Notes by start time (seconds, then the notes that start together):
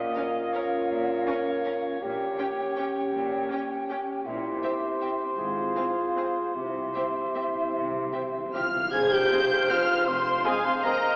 Already playing: C#4 F4 A#4 D#5 F5
0.15 C#4 A#4 F5
0.53 C#4 A#4 C#5 F5
0.90 A#1 A#2
1.27 C#4 A#4 F5
1.65 C#4 A#4 F5
2.01 A#1 A#2 C#4 G4 C#5 G5
2.38 C#4 G4 G5
2.76 C#4 G4 G5
3.13 A#1 A#2
3.50 C#4 G4 G5
3.90 C#4 G4 G5
4.24 A#1 A#2 C4 E4 G4 C5 E5
4.63 C4 G4 E5
5.01 C4 G4 E5
5.37 G#1 G#2 F4 G#4 F5
5.76 C4 G#4 F5
6.16 C4 G#4 F5
6.54 C2 C3 C4 E4 G4 C5 E5
6.62 C3
6.70 C3
6.77 C3
6.86 C3
6.93 C3 C4 G4 E5
7.01 C3
7.08 C3
7.25 C3
7.32 C3 C4 G4 E5
7.39 C3
7.48 C3
7.55 C3
7.62 C3
7.70 C2 C3
7.74 C3
7.84 C3
7.91 C3
7.99 C3
8.06 C3
8.13 C3 C4 G4 E5
8.22 C3
8.30 C3
8.38 C3
8.46 C3
8.53 C3 C4 F4 G4 E5 F5 F6
8.60 C3
8.68 C3
8.76 C3
8.83 C3
8.91 F1 F2 G#4 C5 F5 G#5 G#6, tam-tam
9.11 G4 G5 G6
9.31 C4 G#4
9.69 C4 F4 G#4 C5 F5 F6
10.06 F1 F2 C4 C5 F5 C6
10.44 G#3 C4 G#4 C5 F5 G#5
10.65 C4 C5 C6
10.83 A#3 C4 G#4 A#4 D#5 A#5